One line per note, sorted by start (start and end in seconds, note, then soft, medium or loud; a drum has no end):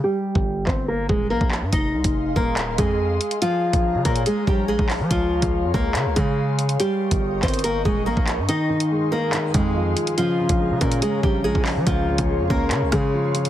0.04 0.64 G3 medium
0.04 0.63 G4 loud
0.35 0.66 G1 loud
0.35 kick loud
0.67 1.08 G1 loud
0.67 0.84 C4 medium
0.67 0.84 C5 medium
0.67 kick medium
0.67 clap medium
0.88 1.06 A#3 medium
0.88 1.05 A#4 medium
1.09 1.32 D#1 loud
1.09 1.27 G#3 soft
1.09 1.26 G#4 medium
1.09 kick loud
1.30 1.40 A#1 loud
1.30 1.48 A#3 medium
1.30 1.47 A#4 medium
1.41 1.63 A#1 loud
1.41 kick medium
1.51 clap loud
1.62 1.72 G2 loud
1.72 1.95 F1 loud
1.72 2.32 D#4 medium
1.72 6.76 G#4 medium
1.72 3.40 D#5 medium
1.72 2.33 D#5 medium
1.72 3.40 F5 medium
1.72 3.40 C6 medium
1.72 kick loud
1.72 closed hi-hat medium
1.94 2.04 C2 loud
2.04 2.35 F1 loud
2.04 kick loud
2.04 closed hi-hat medium
2.36 2.77 D#1 loud
2.36 2.76 A#3 medium
2.36 2.76 A#4 medium
2.36 kick medium
2.57 clap loud
2.57 closed hi-hat medium
2.78 3.19 F2 loud
2.78 3.38 G#3 medium
2.78 3.38 G#4 medium
2.78 kick loud
2.78 closed hi-hat medium
3.21 closed hi-hat medium
3.31 closed hi-hat medium
3.42 4.02 F3 medium
3.42 4.01 F4 loud
3.42 6.76 C#5 medium
3.42 6.76 F5 medium
3.42 5.09 A#5 medium
3.42 closed hi-hat medium
3.73 3.96 A#1 loud
3.73 kick loud
3.73 closed hi-hat medium
3.94 4.04 C#3 loud
4.05 4.25 A#2 loud
4.05 4.22 A#3 medium
4.05 4.22 A#4 medium
4.05 kick medium
4.05 closed hi-hat medium
4.16 closed hi-hat medium
4.26 4.44 G#3 medium
4.26 4.43 G#4 medium
4.26 closed hi-hat medium
4.47 4.78 A#1 loud
4.47 4.65 G3 medium
4.47 4.64 G4 medium
4.47 kick loud
4.68 4.86 G#3 medium
4.68 4.85 G#4 medium
4.79 5.01 A#1 loud
4.79 kick medium
4.90 clap loud
4.90 open hi-hat medium
5.00 5.10 F3 loud
5.11 5.41 C#2 loud
5.11 5.71 F3 medium
5.11 5.70 F4 loud
5.11 6.78 C6 medium
5.11 kick loud
5.11 closed hi-hat medium
5.42 5.65 C#2 loud
5.42 kick loud
5.42 closed hi-hat medium
5.63 5.73 F2 loud
5.74 5.97 C#2 loud
5.74 6.14 A#3 medium
5.74 6.14 A#4 medium
5.74 kick medium
5.95 6.07 C#3 loud
5.95 clap loud
5.95 closed hi-hat medium
6.06 6.16 C#2 loud
6.16 6.77 C#3 loud
6.16 6.76 G#3 medium
6.16 6.76 G#4 medium
6.16 kick loud
6.16 closed hi-hat medium
6.59 closed hi-hat medium
6.69 closed hi-hat medium
6.80 7.40 G3 medium
6.80 7.39 G4 loud
6.80 8.47 A#4 medium
6.80 8.47 D#5 medium
6.80 8.47 G5 medium
6.80 8.47 C#6 medium
6.80 closed hi-hat medium
7.11 7.42 G1 loud
7.11 kick loud
7.11 closed hi-hat medium
7.43 7.84 G1 loud
7.43 7.60 C4 medium
7.43 7.60 C5 medium
7.43 kick medium
7.43 clap medium
7.43 closed hi-hat medium
7.48 closed hi-hat medium
7.54 closed hi-hat medium
7.59 closed hi-hat medium
7.64 7.82 A#3 medium
7.64 7.81 A#4 medium
7.64 closed hi-hat medium
7.85 8.08 D#1 loud
7.85 8.03 G#3 medium
7.85 8.02 G#4 medium
7.85 kick loud
8.06 8.16 A#1 loud
8.06 8.24 A#3 medium
8.06 8.23 A#4 medium
8.17 8.40 A#1 loud
8.17 kick medium
8.27 clap loud
8.27 closed hi-hat medium
8.38 8.48 G2 loud
8.49 8.68 D#3 loud
8.49 9.08 D#4 loud
8.49 10.16 G#4 medium
8.49 10.16 D#5 medium
8.49 9.09 D#5 medium
8.49 11.83 F5 medium
8.49 10.16 C6 medium
8.49 closed hi-hat medium
8.69 9.32 D#3 medium
8.80 closed hi-hat medium
8.91 9.97 G#3 medium
9.12 9.52 A#3 medium
9.12 10.17 D#4 loud
9.12 9.52 A#4 medium
9.33 9.53 D#3 medium
9.33 clap loud
9.33 closed hi-hat medium
9.54 9.95 F2 loud
9.54 10.18 D#3 medium
9.54 10.14 G#3 medium
9.54 10.14 G#4 medium
9.54 kick loud
9.54 closed hi-hat medium
9.75 9.95 F3 medium
9.97 10.18 F3 medium
9.97 closed hi-hat medium
10.07 closed hi-hat medium
10.18 10.38 C#3 medium
10.18 10.78 F3 medium
10.18 10.77 F4 loud
10.18 13.49 G#4 medium
10.18 13.49 C#5 medium
10.18 11.85 A#5 medium
10.18 closed hi-hat medium
10.39 11.01 C#3 medium
10.49 10.72 A#1 loud
10.49 kick loud
10.49 closed hi-hat medium
10.60 11.66 G#3 medium
10.71 10.81 C#3 loud
10.81 11.01 A#2 loud
10.81 10.98 A#3 medium
10.81 11.87 C#4 loud
10.81 10.98 A#4 medium
10.81 kick medium
10.81 closed hi-hat medium
10.92 closed hi-hat medium
11.02 11.22 C#3 medium
11.02 11.20 G#3 medium
11.02 11.19 G#4 medium
11.02 closed hi-hat medium
11.23 11.54 A#1 loud
11.23 11.85 C#3 medium
11.23 11.41 G3 medium
11.23 11.40 G4 medium
11.23 kick loud
11.44 11.64 F3 medium
11.44 11.62 G#3 medium
11.44 11.61 G#4 medium
11.55 11.78 A#1 loud
11.55 kick medium
11.65 11.87 F3 medium
11.65 clap loud
11.65 open hi-hat medium
11.76 11.86 F3 loud
11.87 12.17 C#2 loud
11.87 12.07 C#3 medium
11.87 12.47 F3 medium
11.87 12.46 F4 loud
11.87 13.49 F5 medium
11.87 13.49 C6 medium
11.87 kick loud
11.87 closed hi-hat medium
12.08 12.69 C#3 medium
12.18 12.41 C#2 loud
12.18 kick loud
12.18 closed hi-hat medium
12.29 13.34 G#3 medium
12.40 12.50 F2 medium
12.50 12.73 C#2 loud
12.50 12.90 A#3 medium
12.50 13.49 C#4 loud
12.50 12.90 A#4 medium
12.50 kick medium
12.71 12.90 C#3 medium
12.71 12.83 C#3 loud
12.71 clap loud
12.71 closed hi-hat medium
12.82 12.92 C#2 loud
12.92 13.49 C#3 medium
12.92 13.49 C#3 loud
12.92 13.49 G#3 medium
12.92 13.49 G#4 medium
12.92 kick loud
12.92 cross-stick loud
12.92 closed hi-hat medium
13.14 13.33 F3 medium
13.34 13.49 F3 medium
13.34 closed hi-hat medium
13.45 closed hi-hat medium